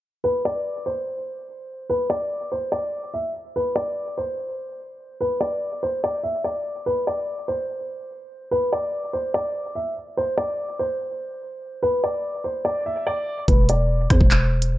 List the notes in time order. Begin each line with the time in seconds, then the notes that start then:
0.24 B4
0.45 D5
0.86 C5
1.90 B4
2.10 D5
2.52 C5
2.72 D5
3.14 E5
3.56 B4
3.76 D5
4.18 C5
5.21 B4
5.41 D5
5.83 C5
6.04 D5
6.23 E5
6.44 D5
6.86 B4
7.07 D5
7.48 C5
8.51 B4
8.73 D5
9.13 C5
9.34 D5
9.75 E5
10.17 C5
10.38 D5
10.79 C5
11.83 B4
12.04 D5
12.44 C5
12.65 D5
12.86 E5
13.07 D5
13.48 E1 B4, kick, closed hi-hat
13.69 D5, closed hi-hat
14.10 E2 C5, kick, cross-stick, closed hi-hat
14.21 E1, kick
14.31 clap, closed hi-hat
14.62 closed hi-hat